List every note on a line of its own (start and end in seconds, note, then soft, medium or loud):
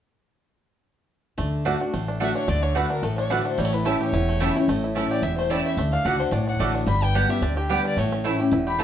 1.38 1.73 D2 medium
1.38 1.64 D3 medium
1.38 1.93 A3 medium
1.65 1.80 D3 medium
1.65 1.75 A3 medium
1.65 1.80 A3 medium
1.65 1.80 D4 medium
1.65 1.75 F#4 medium
1.65 1.78 F#4 medium
1.65 1.76 D5 medium
1.65 1.76 F#5 medium
1.80 2.07 D4 medium
1.80 1.93 D4 soft
1.80 1.92 F#4 medium
1.94 2.29 A1 medium
1.94 2.46 A2 medium
1.94 2.48 A3 medium
2.08 2.20 D4 medium
2.20 2.47 D3 medium
2.20 2.30 A3 medium
2.20 2.47 A3 medium
2.20 2.34 D4 medium
2.20 2.47 D4 medium
2.20 2.30 F#4 medium
2.20 2.48 F#4 medium
2.20 2.30 D5 loud
2.20 2.35 E5 medium
2.20 2.30 F#5 loud
2.36 2.62 D4 medium
2.36 2.51 C#5 medium
2.48 2.83 D2 medium
2.48 2.74 D3 medium
2.48 3.03 A3 medium
2.48 2.64 D5 medium
2.63 2.75 D4 medium
2.63 2.78 C#5 medium
2.75 3.02 D3 medium
2.75 2.85 A3 medium
2.75 3.02 A3 medium
2.75 2.89 D4 medium
2.75 3.02 D4 medium
2.75 2.85 F#4 medium
2.75 3.03 F#4 medium
2.75 2.91 B4 medium
2.75 2.85 D5 medium
2.75 2.85 F#5 medium
2.90 3.17 D4 medium
2.90 3.05 A#4 medium
3.03 3.38 A1 medium
3.03 3.55 A2 medium
3.03 3.58 A3 medium
3.03 3.17 A4 medium
3.18 3.29 D4 medium
3.18 3.33 C#5 medium
3.30 3.56 D3 medium
3.30 3.40 A3 medium
3.30 3.57 A3 medium
3.30 3.44 D4 medium
3.30 3.57 D4 medium
3.30 3.40 F#4 medium
3.30 3.57 F#4 medium
3.30 3.46 B4 medium
3.30 3.40 D5 medium
3.30 3.40 F#5 medium
3.45 3.58 D4 medium
3.45 3.61 C5 medium
3.58 3.93 A1 medium
3.58 4.10 A2 medium
3.58 3.65 G3 medium
3.58 3.75 C#5 loud
3.65 3.86 A3 medium
3.73 4.11 E4 medium
3.73 3.87 B4 medium
3.85 4.12 E3 medium
3.85 3.95 A3 medium
3.85 4.12 A3 medium
3.85 4.25 C#4 medium
3.85 4.12 C#4 medium
3.85 3.95 E4 medium
3.85 4.12 E4 medium
3.85 4.00 G4 medium
3.85 3.95 C#5 medium
3.85 3.95 A5 loud
4.01 4.38 G4 medium
4.01 4.64 C#5 medium
4.13 4.48 E1 medium
4.13 4.66 E2 medium
4.13 4.53 E4 medium
4.29 4.69 A3 medium
4.40 4.55 E3 medium
4.40 4.50 A3 medium
4.40 4.55 A3 medium
4.40 4.55 C#4 medium
4.40 4.50 E4 loud
4.40 4.54 E4 medium
4.40 4.80 G4 medium
4.40 4.50 C#5 medium
4.40 4.50 A5 medium
4.55 4.68 C#4 medium
4.55 4.67 E4 medium
4.55 4.83 E4 medium
4.68 5.03 A1 medium
4.68 5.21 A2 medium
4.68 5.08 A3 medium
4.84 5.21 E4 medium
4.95 5.22 E3 medium
4.95 5.05 A3 medium
4.95 5.22 A3 medium
4.95 5.35 C#4 medium
4.95 5.22 C#4 medium
4.95 5.05 E4 medium
4.95 5.23 E4 medium
4.95 5.05 C#5 medium
4.95 5.05 A5 medium
5.11 5.48 G4 medium
5.11 5.25 D5 medium
5.22 5.57 E1 medium
5.22 5.75 E2 medium
5.22 5.62 E4 medium
5.22 5.37 E5 medium
5.37 5.76 A3 medium
5.37 5.52 C5 medium
5.50 5.76 E3 medium
5.50 5.60 A3 medium
5.50 5.77 A3 medium
5.50 5.77 C#4 medium
5.50 5.60 E4 medium
5.50 5.77 E4 medium
5.50 5.78 G4 medium
5.50 5.60 C#5 medium
5.50 5.65 D5 medium
5.50 5.60 A5 loud
5.65 5.78 E4 medium
5.65 5.77 E5 medium
5.77 5.95 D2 medium
5.77 6.03 D3 medium
5.77 6.17 A3 medium
5.92 6.04 D4 medium
5.92 6.07 F5 medium
6.04 6.28 C#2 medium
6.04 6.31 D3 medium
6.04 6.15 A3 medium
6.04 6.31 A3 medium
6.04 6.19 D4 medium
6.04 6.32 D4 medium
6.04 6.15 F#4 medium
6.04 6.32 F#4 medium
6.04 6.15 D5 medium
6.04 6.15 F#5 medium
6.04 6.21 F#5 loud
6.20 6.31 D4 medium
6.20 6.34 C5 medium
6.31 6.56 B1 medium
6.31 6.84 A2 medium
6.31 6.46 D4 medium
6.31 6.48 D5 medium
6.47 6.73 D4 medium
6.47 6.56 F#5 loud
6.59 6.83 A1 medium
6.59 6.86 D3 medium
6.59 6.86 A3 medium
6.59 6.70 A3 medium
6.59 6.87 A3 medium
6.59 6.86 D4 medium
6.59 6.70 F#4 medium
6.59 6.87 F#4 medium
6.59 6.70 D5 loud
6.59 6.70 F#5 medium
6.75 6.87 D4 medium
6.86 7.22 G1 medium
6.86 7.39 G2 medium
6.86 7.27 G3 medium
6.86 7.05 B5 medium
7.02 7.40 B3 medium
7.02 7.17 G5 loud
7.14 7.29 D3 medium
7.14 7.29 G3 medium
7.14 7.24 B3 medium
7.14 7.29 B3 medium
7.14 7.42 D4 medium
7.14 7.25 G4 medium
7.14 7.28 G4 medium
7.14 7.25 D5 medium
7.14 7.31 F#5 medium
7.14 7.25 G5 loud
7.29 7.43 B3 soft
7.29 7.42 G4 medium
7.29 7.56 G4 medium
7.29 7.44 E5 medium
7.41 7.77 D2 medium
7.41 7.68 D3 medium
7.41 7.82 D4 medium
7.41 7.57 D5 medium
7.57 7.95 G4 medium
7.57 7.71 G4 medium
7.69 7.96 D3 medium
7.69 7.96 G3 medium
7.69 7.79 B3 medium
7.69 7.98 B3 medium
7.69 7.96 B3 medium
7.69 7.80 G4 medium
7.69 7.97 G4 medium
7.69 7.85 B4 medium
7.69 7.80 D5 medium
7.69 7.80 G5 loud
7.85 7.98 D4 medium
7.85 8.00 D5 loud
7.97 8.32 A1 medium
7.97 8.50 A2 medium
7.97 8.37 A3 medium
7.97 8.25 C#5 medium
8.12 8.50 C#4 medium
8.24 8.39 E3 medium
8.24 8.34 A3 medium
8.24 8.39 A3 medium
8.24 8.39 C#4 medium
8.24 8.34 E4 medium
8.24 8.52 E4 medium
8.24 8.37 E4 medium
8.24 8.35 C#5 medium
8.24 8.35 A5 medium
8.39 8.52 C#4 soft
8.39 8.51 E4 medium
8.39 8.66 G4 medium
8.51 8.84 E1 medium
8.51 8.84 E2 medium
8.51 8.84 E4 medium
8.67 8.84 G4 medium
8.67 8.81 B5 loud
8.78 8.84 E3 medium
8.78 8.84 A3 medium
8.78 8.84 C#4 medium
8.78 8.84 E4 medium
8.78 8.84 C#5 loud
8.78 8.84 A5 loud
8.78 8.84 A5 medium